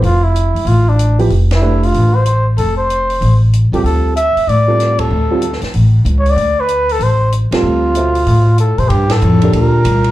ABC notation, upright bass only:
X:1
M:4/4
L:1/8
Q:"Swing" 1/4=190
K:Ddor
V:1 name="Upright bass" clef=bass
F,,,3 ^C,, A,,,4 | F,,,4 A,,,4 | F,,,4 A,,,3 C,, | D,,3 z A,,4 |
D,,3 z A,,,2 ^C,,2 | D,,4 A,,,3 C,, | D,,4 A,,3 A,, | [K:Gm] G,,2 F,,2 D,,2 C,,2 |]